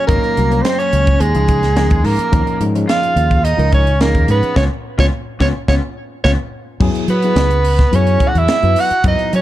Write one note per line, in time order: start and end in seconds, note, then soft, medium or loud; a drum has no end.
0.07 0.21 G#1 medium
0.07 0.34 F#3 medium
0.07 0.60 A#3 medium
0.07 0.34 A#3 medium
0.07 0.34 C#4 medium
0.07 0.34 D#4 loud
0.07 0.64 A#4 medium
0.07 kick loud
0.07 closed hi-hat medium
0.23 muted fretless electric bass stroke soft
0.23 closed hi-hat soft
0.36 0.61 C2 medium
0.36 0.49 F#3 medium
0.36 0.50 A#3 medium
0.36 0.50 C#4 medium
0.36 0.50 F#4 medium
0.36 closed hi-hat soft
0.50 1.14 F#3 medium
0.50 1.15 A#3 medium
0.50 1.15 C#4 medium
0.50 1.15 A#4 medium
0.50 closed hi-hat soft
0.62 0.79 C4 medium
0.62 0.80 C5 medium
0.62 snare medium
0.62 closed hi-hat medium
0.78 1.21 C#4 medium
0.78 1.22 C#5 medium
0.78 closed hi-hat soft
0.93 1.17 C#2 medium
0.93 closed hi-hat medium
1.07 kick medium
1.07 closed hi-hat soft
1.20 1.33 D#2 loud
1.20 2.05 G#3 medium
1.20 2.06 G#4 medium
1.20 closed hi-hat medium
1.34 1.90 C#2 medium
1.34 1.60 F3 medium
1.34 1.61 C#4 medium
1.34 1.61 D#4 medium
1.34 1.61 G#4 medium
1.34 closed hi-hat soft
1.48 kick medium
1.48 closed hi-hat medium
1.63 1.70 D#4 soft
1.63 1.71 A#4 soft
1.63 snare soft
1.63 closed hi-hat soft
1.76 2.28 F3 medium
1.76 2.28 C#4 medium
1.76 2.28 D#4 medium
1.76 2.29 A#4 medium
1.76 snare medium
1.76 closed hi-hat medium
1.90 2.02 D#2 medium
1.90 kick medium
1.90 closed hi-hat soft
2.04 2.16 G#2 medium
2.04 2.62 A#3 medium
2.04 2.62 A#4 medium
2.04 open hi-hat medium
2.18 muted fretless electric bass stroke soft
2.18 closed hi-hat soft
2.32 2.45 D#2 loud
2.32 2.58 F3 medium
2.32 2.58 C#4 medium
2.32 2.59 D#4 medium
2.32 2.59 A#4 medium
2.32 kick loud
2.32 closed hi-hat medium
2.47 muted fretless electric bass stroke soft
2.47 closed hi-hat soft
2.60 2.84 G#2 medium
2.60 2.74 F3 medium
2.60 2.74 C#4 medium
2.60 2.74 D#4 medium
2.60 2.74 A#4 medium
2.60 closed hi-hat medium
2.75 3.39 F3 medium
2.75 3.39 C#4 medium
2.75 3.39 D#4 medium
2.75 3.40 G#4 medium
2.75 closed hi-hat soft
2.88 3.40 F4 medium
2.88 3.46 F5 loud
2.88 snare medium
2.88 closed hi-hat medium
3.03 closed hi-hat soft
3.16 3.52 D#2 medium
3.16 closed hi-hat soft
3.31 kick medium
3.31 closed hi-hat soft
3.44 3.51 D#4 soft
3.44 3.73 D#4 medium
3.44 3.52 G#4 soft
3.44 3.73 D#5 medium
3.44 closed hi-hat medium
3.57 4.15 C#2 medium
3.57 3.83 F3 medium
3.57 3.84 C#4 medium
3.57 3.84 D#4 medium
3.57 3.85 A#4 medium
3.57 closed hi-hat soft
3.72 3.99 C#4 medium
3.72 4.00 C#5 medium
3.72 kick medium
3.72 closed hi-hat soft
3.85 3.93 D#4 soft
3.85 closed hi-hat soft
4.01 4.52 F3 medium
4.01 4.27 A#3 medium
4.01 4.52 C#4 medium
4.01 4.52 D#4 medium
4.01 4.53 G#4 medium
4.01 4.27 A#4 medium
4.01 snare medium
4.01 closed hi-hat medium
4.15 4.27 D#2 medium
4.15 kick medium
4.15 closed hi-hat soft
4.28 4.40 G#2 medium
4.28 4.55 B3 medium
4.28 4.56 B4 medium
4.28 closed hi-hat medium
4.43 muted fretless electric bass stroke soft
4.43 closed hi-hat soft
4.56 4.67 C#2 medium
4.56 4.65 B3 medium
4.56 4.66 B3 medium
4.56 4.65 C#4 medium
4.56 4.66 C#4 medium
4.56 4.65 F4 medium
4.56 4.66 F4 medium
4.56 4.64 C#5 medium
4.56 kick medium
4.56 snare medium
4.98 5.09 C#2 medium
4.98 5.08 B3 medium
4.98 5.07 B3 medium
4.98 5.07 C#4 medium
4.98 5.08 C#4 medium
4.98 5.07 F4 medium
4.98 5.06 C#5 medium
4.98 kick medium
4.98 snare medium
5.40 5.51 C#2 medium
5.40 5.50 B3 medium
5.40 5.50 C#4 medium
5.40 5.50 F4 medium
5.40 5.48 C#5 medium
5.40 kick medium
5.40 snare medium
5.68 5.79 C#2 medium
5.68 5.78 B3 medium
5.68 5.78 C#4 medium
5.68 5.78 F4 medium
5.68 5.75 C#5 medium
5.68 kick medium
5.68 snare medium
6.24 6.35 C#2 medium
6.24 6.34 B3 medium
6.24 6.34 C#4 medium
6.24 6.34 F4 medium
6.24 6.31 C#5 medium
6.24 kick medium
6.24 snare medium
6.80 6.93 F#2 medium
6.80 7.06 F#3 loud
6.80 7.06 B3 medium
6.80 7.07 E4 medium
6.80 7.07 G#4 loud
6.80 kick loud
6.80 crash medium
6.94 muted fretless electric bass stroke soft
6.94 closed hi-hat soft
7.08 7.32 F#3 medium
7.08 7.89 B3 medium
7.08 7.17 G#4 soft
7.08 7.97 B4 medium
7.08 closed hi-hat medium
7.22 7.49 F#3 medium
7.22 7.49 B3 medium
7.22 7.49 E4 medium
7.22 7.50 G#4 medium
7.22 closed hi-hat soft
7.36 7.83 C#2 medium
7.36 snare loud
7.36 closed hi-hat medium
7.51 7.59 G#4 soft
7.51 closed hi-hat soft
7.64 open hi-hat medium
7.79 kick medium
7.79 snare soft
7.79 closed hi-hat soft
7.91 8.16 F#2 medium
7.91 8.56 F#3 medium
7.91 8.56 B3 medium
7.91 8.56 E4 medium
7.91 8.57 G#4 medium
7.91 8.30 C#5 medium
7.91 closed hi-hat medium
7.95 8.29 C#4 medium
8.07 closed hi-hat soft
8.20 kick medium
8.20 closed hi-hat medium
8.27 8.38 F#4 medium
8.27 8.40 F#5 medium
8.35 8.46 E2 medium
8.35 8.78 E4 medium
8.35 8.82 E5 medium
8.35 closed hi-hat soft
8.48 snare medium
8.48 closed hi-hat medium
8.62 8.74 F#2 medium
8.62 8.88 F#3 medium
8.62 8.88 B3 medium
8.62 8.88 E4 medium
8.62 8.89 B4 medium
8.62 closed hi-hat soft
8.76 9.05 F#4 medium
8.76 open hi-hat medium
8.80 9.06 F#5 loud
8.90 8.97 E4 soft
8.90 muted fretless electric bass stroke soft
8.90 closed hi-hat soft
9.04 9.16 F#2 medium
9.04 9.30 F#3 medium
9.04 9.30 B3 medium
9.04 9.31 D#4 medium
9.04 9.31 E4 medium
9.04 9.31 F#4 medium
9.04 9.32 D#5 medium
9.04 kick loud
9.04 closed hi-hat medium
9.19 muted fretless electric bass stroke soft
9.19 closed hi-hat soft
9.32 9.42 F#3 medium
9.32 9.42 C#4 medium
9.32 9.39 E4 soft
9.32 9.40 G#4 soft
9.32 9.42 C#5 loud
9.32 closed hi-hat medium